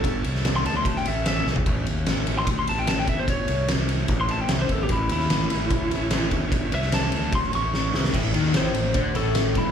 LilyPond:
<<
  \new Staff \with { instrumentName = "Lead electric guitar" } { \time 4/4 \key a \mixolydian \tempo 4 = 148 r4 r16 c'''16 a''16 c'''16 a''16 g''16 e''8 e''8 r8 | r4. r16 c'''16 r16 c'''16 a''16 g''16 a''16 g''16 e''16 c''16 | cis''4 r4 r16 c'''16 a''16 g''16 e''16 c''16 a'16 g'16 | e'8 e'2. r8 |
r8 e''8 a''4 c'''8 cis'''4. | r4 c''4. a'4 e'8 | }
  \new Staff \with { instrumentName = "Tonewheel organ" } { \time 4/4 \key a \mixolydian <e a cis' a'>1 | <e a cis'>1~ | <e a cis'>1 | <e a cis'>1~ |
<e a cis'>1 | r1 | }
  \new Staff \with { instrumentName = "Overdriven electric guitar" } { \clef bass \time 4/4 \key a \mixolydian r1 | r1 | r1 | r1 |
r1 | a,8 dis8 a,8 a,8 d8 a,4 g,8 | }
  \new Staff \with { instrumentName = "Fingered electric bass" } { \clef bass \time 4/4 \key a \mixolydian g,,8 c,4 d,4 a,,4 c,8 | a,,8 dis,8 a,,8 a,,8 d,8 a,,4 g,,8~ | g,,8 c,4. a,,4 c,8 a,,8 | a,,8 dis,8 a,,8 a,,8 d,8 a,,4 g,,8~ |
g,,8 c,4 d,4 a,,4 c,8 | a,,8 dis,8 a,,8 a,,8 d,8 a,,4 g,,8 | }
  \new DrumStaff \with { instrumentName = "Drums" } \drummode { \time 4/4 <bd cymr>8 cymr16 sn16 <cymr sn>8 cymr8 <bd cymr>16 sn16 cymr8 <cymr sn>8 sn16 tomfh16 | <bd cymr>8 cymr8 <cymr sn>8 cymr8 <bd cymr>8 cymr8 <cymr sn>8 <bd cymr>8 | <bd cymr>8 cymr8 <cymr sn>8 cymr8 <bd cymr>8 cymr8 <cymr sn>8 <bd cymr>8 | <bd cymr>8 cymr16 sn16 <cymr sn>8 cymr8 <bd cymr>8 cymr8 <cymr sn>8 <bd cymr>8 |
<bd cymr>8 cymr16 sn16 <cymr sn>8 cymr8 <bd cymr>16 sn16 cymr8 sn8 sn16 sn16 | <cymc bd>8 cymr8 <cymr sn>8 cymr8 <bd cymr>8 cymr8 <cymr sn>8 <bd cymr>8 | }
>>